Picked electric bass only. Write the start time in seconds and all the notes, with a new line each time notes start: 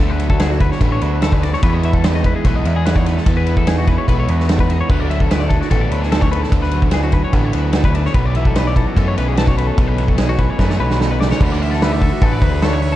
0.00 D2
0.81 A1
1.02 D2
1.63 E2
2.45 B1
2.66 E2
3.27 E2
4.08 B1
4.29 E2
4.90 D2
5.71 A1
5.91 D2
6.52 D2
7.33 A1
7.54 D2
8.14 B1
8.96 F#2
9.18 B1
9.78 B1
10.59 F#2
10.79 B1
11.41 D2
12.22 A1
12.42 D2